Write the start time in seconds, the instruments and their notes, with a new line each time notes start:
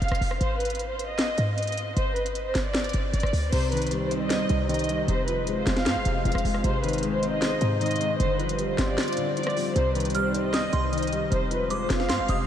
0.02 808-style bass F1, violin section F5, closed hi-hat
0.08 808-style bass F1, cross-stick, closed hi-hat
0.15 closed hi-hat
0.21 808-style bass F1, open hi-hat
0.31 cross-stick
0.41 808-style bass G#1, violin section C5, closed hi-hat
0.60 violin section B4, closed hi-hat
0.65 closed hi-hat
0.70 closed hi-hat
0.75 closed hi-hat
0.79 closed hi-hat
0.89 violin section C5
0.99 closed hi-hat
1.09 violin section D#5
1.18 snare, clap, closed hi-hat
1.38 808-style bass G#2, closed hi-hat
1.57 violin section D#5, closed hi-hat
1.63 closed hi-hat
1.67 closed hi-hat
1.72 closed hi-hat
1.77 closed hi-hat
1.97 808-style bass G1, violin section C5, closed hi-hat
2.16 violin section B4, closed hi-hat
2.26 closed hi-hat
2.35 closed hi-hat
2.45 violin section C5
2.55 808-style bass G1, snare, clap, closed hi-hat
2.65 violin section D5
2.75 snare, clap, closed hi-hat
2.79 closed hi-hat
2.84 closed hi-hat
2.89 closed hi-hat
2.93 808-style bass G1, closed hi-hat
3.14 808-style bass G1, violin section D5, closed hi-hat
3.20 808-style bass G1, cross-stick, closed hi-hat
3.27 closed hi-hat
3.33 808-style bass D2, open hi-hat
3.52 808-style bass C2, grand piano C3, analog synth pad G3 D#4 C5, violin section C5, closed hi-hat, crash
3.72 grand piano D#3, violin section B4, closed hi-hat
3.77 closed hi-hat
3.82 closed hi-hat
3.87 closed hi-hat
3.91 grand piano G3, closed hi-hat
4.01 violin section C5
4.11 grand piano C4, closed hi-hat
4.21 violin section D#5
4.30 grand piano C5, snare, clap, closed hi-hat
4.49 808-style bass C2, grand piano C3, closed hi-hat
4.69 grand piano D#3, violin section D#5, closed hi-hat
4.74 closed hi-hat
4.79 closed hi-hat
4.84 closed hi-hat
4.89 grand piano G3, closed hi-hat
5.08 808-style bass F1, grand piano C3, analog synth pad G#3 F4, violin section C5, closed hi-hat
5.28 grand piano F3, violin section B4, closed hi-hat
5.47 grand piano G#3, closed hi-hat
5.58 violin section C5
5.67 808-style bass F1, grand piano C4, snare, clap, closed hi-hat
5.77 violin section F5, snare
5.86 808-style bass G#2, grand piano C5, snare, clap, closed hi-hat
5.96 808-style bass F1
6.05 808-style bass F1, grand piano C3, closed hi-hat
6.25 808-style bass F1, grand piano F3, violin section F5, closed hi-hat
6.32 808-style bass F1, cross-stick, closed hi-hat
6.38 closed hi-hat
6.44 808-style bass F1, grand piano G#3, open hi-hat
6.54 cross-stick
6.64 808-style bass G#1, grand piano C3, analog synth pad D#4, violin section C5, closed hi-hat
6.84 grand piano D#3, violin section B4, closed hi-hat
6.89 closed hi-hat
6.93 closed hi-hat
6.98 closed hi-hat
7.03 grand piano G#3, closed hi-hat
7.12 violin section C5
7.23 grand piano C4, closed hi-hat
7.32 violin section D#5
7.42 grand piano C5, snare, clap, closed hi-hat
7.61 808-style bass G#2, grand piano C3, closed hi-hat
7.81 grand piano D#3, violin section D#5, closed hi-hat
7.86 closed hi-hat
7.91 closed hi-hat
7.96 closed hi-hat
8.00 grand piano G#3, closed hi-hat
8.20 808-style bass G1, grand piano D3, analog synth pad G3 F4, violin section C5, closed hi-hat
8.39 grand piano F3, violin section B4, closed hi-hat
8.49 closed hi-hat
8.58 grand piano G3, closed hi-hat
8.69 violin section C5
8.78 808-style bass G1, grand piano C4, snare, clap, closed hi-hat
8.89 violin section D5
8.98 grand piano D4, snare, clap, closed hi-hat
9.03 closed hi-hat
9.08 closed hi-hat
9.13 closed hi-hat
9.17 grand piano D3, closed hi-hat
9.37 grand piano F3, violin section D5, closed hi-hat
9.43 cross-stick, closed hi-hat
9.50 closed hi-hat
9.56 grand piano G3, open hi-hat
9.76 808-style bass C2, grand piano C3, analog synth pad G3 D#4, violin section C5, closed hi-hat
9.95 grand piano D#3, violin section B4, closed hi-hat
10.00 closed hi-hat
10.05 closed hi-hat
10.10 closed hi-hat
10.15 grand piano G3, synth bell F6, closed hi-hat
10.25 violin section C5
10.34 grand piano C4, closed hi-hat
10.44 violin section D#5
10.54 grand piano C5, synth bell D#6, snare, clap, closed hi-hat
10.73 808-style bass C2, grand piano C3, synth bell C6, closed hi-hat
10.92 grand piano D#3, violin section D#5, closed hi-hat
10.98 closed hi-hat
11.03 closed hi-hat
11.07 closed hi-hat
11.12 grand piano G3, closed hi-hat
11.32 808-style bass F1, grand piano C3, analog synth pad G#3 F4, violin section C5, closed hi-hat
11.51 grand piano F3, violin section B4, closed hi-hat
11.70 grand piano G#3, synth bell D6, closed hi-hat
11.81 violin section C5
11.90 808-style bass F1, grand piano C4, snare, clap, closed hi-hat
12.00 violin section F5, snare
12.09 808-style bass G#2, grand piano C5, synth bell C6, snare, clap, closed hi-hat
12.19 808-style bass F1
12.29 808-style bass F1, grand piano C3, synth bell D#6, closed hi-hat